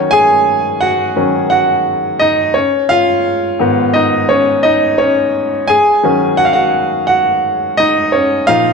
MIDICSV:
0, 0, Header, 1, 2, 480
1, 0, Start_track
1, 0, Key_signature, -6, "minor"
1, 0, Tempo, 697674
1, 80, Time_signature, 4, 2, 24, 8
1, 6006, End_track
2, 0, Start_track
2, 0, Title_t, "Grand piano"
2, 0, Program_c, 0, 0
2, 0, Control_c, 0, 64, 127
2, 0, Note_on_c, 0, 51, 55
2, 0, Note_on_c, 0, 54, 46
2, 0, Note_on_c, 0, 61, 57
2, 74, Note_on_c, 0, 80, 108
2, 87, Note_on_c, 0, 68, 81
2, 536, Note_off_c, 0, 68, 0
2, 554, Note_on_c, 0, 78, 98
2, 567, Note_on_c, 0, 66, 77
2, 572, Note_off_c, 0, 80, 0
2, 789, Note_off_c, 0, 51, 0
2, 792, Note_off_c, 0, 54, 0
2, 794, Note_off_c, 0, 61, 0
2, 799, Note_on_c, 0, 51, 46
2, 803, Note_on_c, 0, 54, 45
2, 804, Note_on_c, 0, 61, 51
2, 1015, Note_off_c, 0, 51, 0
2, 1016, Note_off_c, 0, 66, 0
2, 1017, Note_off_c, 0, 54, 0
2, 1018, Note_off_c, 0, 61, 0
2, 1021, Note_off_c, 0, 78, 0
2, 1031, Note_on_c, 0, 78, 91
2, 1045, Note_on_c, 0, 66, 71
2, 1495, Note_off_c, 0, 66, 0
2, 1510, Note_on_c, 0, 75, 91
2, 1525, Note_on_c, 0, 63, 69
2, 1530, Note_off_c, 0, 78, 0
2, 1738, Note_off_c, 0, 75, 0
2, 1746, Note_off_c, 0, 63, 0
2, 1748, Note_on_c, 0, 73, 79
2, 1763, Note_on_c, 0, 61, 51
2, 1769, Control_c, 0, 64, 0
2, 1900, Control_c, 0, 64, 127
2, 1977, Note_off_c, 0, 73, 0
2, 1985, Note_off_c, 0, 61, 0
2, 1989, Note_on_c, 0, 77, 100
2, 2002, Note_on_c, 0, 65, 84
2, 2472, Note_on_c, 0, 44, 58
2, 2477, Note_on_c, 0, 51, 47
2, 2481, Note_on_c, 0, 59, 61
2, 2694, Note_off_c, 0, 65, 0
2, 2708, Note_on_c, 0, 75, 80
2, 2722, Note_on_c, 0, 63, 61
2, 2736, Note_off_c, 0, 77, 0
2, 2763, Note_off_c, 0, 75, 0
2, 2776, Note_off_c, 0, 63, 0
2, 2806, Note_off_c, 0, 44, 0
2, 2808, Note_off_c, 0, 51, 0
2, 2811, Note_off_c, 0, 59, 0
2, 2950, Note_on_c, 0, 73, 78
2, 2964, Note_on_c, 0, 61, 61
2, 3178, Note_off_c, 0, 73, 0
2, 3185, Note_off_c, 0, 61, 0
2, 3185, Note_on_c, 0, 75, 86
2, 3199, Note_on_c, 0, 63, 73
2, 3415, Note_off_c, 0, 75, 0
2, 3423, Note_off_c, 0, 63, 0
2, 3427, Note_on_c, 0, 73, 81
2, 3442, Note_on_c, 0, 61, 62
2, 3781, Note_off_c, 0, 73, 0
2, 3789, Note_off_c, 0, 61, 0
2, 3905, Note_on_c, 0, 80, 97
2, 3919, Note_on_c, 0, 68, 77
2, 3928, Control_c, 0, 64, 0
2, 4058, Control_c, 0, 64, 127
2, 4151, Note_on_c, 0, 51, 56
2, 4154, Note_on_c, 0, 54, 53
2, 4158, Note_on_c, 0, 61, 59
2, 4372, Note_off_c, 0, 68, 0
2, 4385, Note_on_c, 0, 78, 99
2, 4399, Note_on_c, 0, 66, 68
2, 4407, Note_off_c, 0, 80, 0
2, 4438, Note_on_c, 0, 77, 77
2, 4448, Note_off_c, 0, 78, 0
2, 4449, Note_off_c, 0, 66, 0
2, 4493, Note_on_c, 0, 78, 92
2, 4500, Note_off_c, 0, 77, 0
2, 4507, Note_on_c, 0, 66, 73
2, 4853, Note_off_c, 0, 78, 0
2, 4854, Note_off_c, 0, 66, 0
2, 4864, Note_on_c, 0, 78, 88
2, 4879, Note_on_c, 0, 66, 71
2, 5332, Note_off_c, 0, 66, 0
2, 5349, Note_on_c, 0, 75, 94
2, 5365, Note_on_c, 0, 63, 66
2, 5366, Note_off_c, 0, 78, 0
2, 5586, Note_off_c, 0, 63, 0
2, 5588, Note_on_c, 0, 73, 72
2, 5593, Note_off_c, 0, 61, 0
2, 5602, Note_off_c, 0, 75, 0
2, 5603, Note_on_c, 0, 61, 54
2, 5808, Note_off_c, 0, 51, 0
2, 5809, Note_off_c, 0, 54, 0
2, 5825, Note_off_c, 0, 61, 0
2, 5827, Note_on_c, 0, 77, 106
2, 5834, Note_on_c, 0, 46, 53
2, 5837, Note_on_c, 0, 53, 53
2, 5841, Note_off_c, 0, 73, 0
2, 5841, Note_on_c, 0, 63, 70
2, 5842, Note_on_c, 0, 65, 79
2, 5847, Control_c, 0, 64, 0
2, 5978, Control_c, 0, 64, 127
2, 6006, Note_off_c, 0, 46, 0
2, 6006, Note_off_c, 0, 53, 0
2, 6006, Note_off_c, 0, 63, 0
2, 6006, Note_off_c, 0, 65, 0
2, 6006, Note_off_c, 0, 77, 0
2, 6006, End_track
0, 0, End_of_file